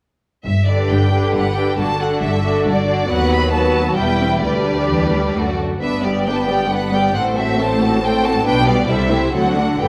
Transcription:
0.45 double bass section G1, cello section G2, violin section E5
0.67 viola section D3 D4, violin section G4 B4 D5
0.89 double bass section G1, cello section G2, violin section G5
1.12 viola section D3 D4, violin section G4 B4
1.34 double bass section G1, cello section G2, violin section F#5
1.56 viola section D3 D4, violin section G4 B4 G5
1.77 double bass section G1, cello section G2, viola section D3 D4, violin section F#4 A4 A5
1.99 viola section D3 D4, violin section F#4 A4 F#5
2.21 double bass section G1, cello section G2, violin section E5
2.43 viola section D3 D4, violin section F#4 A4
2.65 double bass section G1, cello section G2, violin section D5
2.87 viola section D3 D4, violin section F#4 A4
3.08 double bass section D#2, cello section D#2, viola section F#3 B3, violin section F#4 B4 F#5
3.32 violin section B5
3.52 viola section F#3 B3, violin section F#4 B4 A5
3.97 double bass section E1, cello section E2, viola section G3 B3, violin section E4 B4 G5
4.20 viola section C4
4.43 double bass section D2, cello section D2, viola section G3 D4, violin section G4 B4 D5
4.89 cello section E2
5.12 cello section D2
5.35 double bass section D2, cello section F#2, viola section A3 D4, violin section F#4 A4
5.82 double bass section G1, cello section G2, viola section B3 D4, violin section B4 E5
6.03 viola section G3 B3, violin section G4 D5
6.26 viola section B3 D4, violin section B4 G5
6.34 violin section A5
6.42 violin section G5
6.48 viola section G3 B3, violin section G4 D5
6.69 viola section B3 D4, violin section B4 F#5
6.92 viola section G3 B3, violin section G4 D5 G5
7.15 double bass section A1, cello section A2, viola section A3 C4, violin section A4 C5 F#5
7.37 viola section A3 C4, violin section F#4 A4 E5
7.58 viola section A3 C4, violin section A4 C5 A5
7.80 viola section A3 C4, violin section F#4 A4
8.02 viola section A3 C4, violin section A4 C5 G5
8.23 viola section A3 C4, violin section F#4 A4 A5
8.45 double bass section B1, cello section B2, viola section B3 D4, violin section B4 G5
8.67 viola section G3 B3, violin section G4 D5
8.88 double bass section C2, cello section C3, viola section G3 C4, violin section E4 A4 E5
9.09 viola section A3 E4, violin section G4 C5
9.33 double bass section D2, cello section D3, viola section F#3 C4, violin section F#4 A4 F#5
9.56 viola section A3 D4, violin section D4 F#4
9.81 double bass section G1, cello section G2, viola section D3 B3, violin section G4 B4 G5

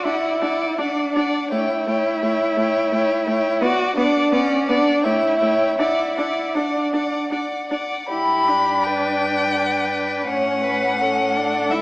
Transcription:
0.05 viola D4, cello E4, violin D5 F#5
0.41 viola D4, violin D5 F#5
0.78 viola D4, cello D4, violin D5 F#5
1.15 viola D4, violin D5 F#5
1.50 viola A3, cello E4, violin C#5 G5
1.87 viola A3, violin C#5 G5
2.21 viola A3, violin C#5 G5
2.57 viola A3, violin C#5 G5
2.92 viola A3, violin C#5 G5
3.26 viola A3, violin C#5 G5
3.61 viola B3, cello F#4, violin D5 F#5
3.96 viola B3, cello D4, violin D5 F#5
4.32 viola B3, cello C#4, violin D5 F#5
4.67 viola B3, cello D4, violin D5 F#5
5.02 viola A3, cello E4, violin C#5 G5
5.39 viola A3, violin C#5 G5
5.78 viola D4, cello E4, violin D5 F#5
6.15 viola D4, violin D5 F#5
6.53 cello D4, viola D4, violin D5 F#5
6.91 viola D4, violin D5 F#5
7.31 viola D4, violin D5 F#5
7.70 viola D4, violin D5 F#5
8.09 cello G2, viola E4, violin G4 B5
8.48 viola D4
8.84 violin B4 G5
9.58 violin B4
10.28 cello A2, viola C#4, violin C#5 F#5
10.64 violin B4
10.99 viola C#4, violin A4
11.36 viola D4
11.71 cello C#2, viola E4, violin E5

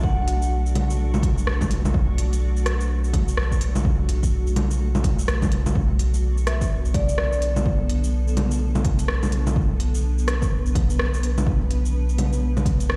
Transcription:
Already playing: sub bass B1, ambient pad A3 F#4, synth texture D4 C#6
0.04 vibraphone F#5, kick
0.28 open hi-hat
0.42 shaker
0.66 shaker
0.75 open hi-hat, low bongo
0.90 shaker
1.14 low bongo, shaker
1.23 kick, open hi-hat
1.38 shaker
1.47 cross-stick
1.61 kick, low bongo, shaker
1.71 open hi-hat
1.85 low bongo, shaker
1.94 kick
2.18 open hi-hat
2.33 open hi-hat, shaker
2.57 shaker
2.66 cross-stick, open hi-hat
2.81 shaker
3.04 shaker
3.13 kick, open hi-hat, low bongo
3.28 shaker
3.37 cross-stick
3.52 kick, shaker
3.61 open hi-hat
3.76 low bongo, shaker
3.85 kick
4.09 open hi-hat
4.23 kick, shaker
4.47 shaker
4.56 open hi-hat, low bongo
4.71 shaker
4.95 low bongo, shaker
5.04 kick, open hi-hat
5.19 shaker
5.28 cross-stick, open hi-hat
5.42 kick, low bongo, shaker
5.52 open hi-hat
5.66 low bongo, shaker
5.75 sub bass B1, ambient pad D3 B3 A4, kick
5.99 open hi-hat
6.14 shaker
6.37 shaker
6.47 vibraphone E5, cross-stick, open hi-hat
6.61 kick, shaker
6.85 shaker
6.94 vibraphone D5, kick, open hi-hat, low bongo
7.09 shaker
7.18 cross-stick
7.33 shaker
7.42 open hi-hat
7.56 low bongo, shaker
7.66 kick
7.90 open hi-hat
8.04 shaker
8.28 shaker
8.37 open hi-hat, low bongo
8.51 shaker
8.75 low bongo, shaker
8.85 kick, open hi-hat
8.99 open hi-hat, shaker
9.08 cross-stick
9.23 low bongo, shaker
9.32 open hi-hat
9.47 low bongo, shaker
9.56 ambient pad B4, kick
9.80 open hi-hat
9.95 shaker
10.18 shaker
10.28 cross-stick, open hi-hat
10.42 kick, shaker
10.66 shaker
10.75 kick, open hi-hat, low bongo
10.90 shaker
10.99 cross-stick
11.14 shaker
11.23 open hi-hat
11.38 low bongo, shaker
11.47 kick
11.71 open hi-hat
11.85 shaker
12.09 shaker
12.18 open hi-hat, low bongo
12.33 shaker
12.57 low bongo, shaker
12.66 kick, open hi-hat
12.80 open hi-hat, shaker
12.90 cross-stick

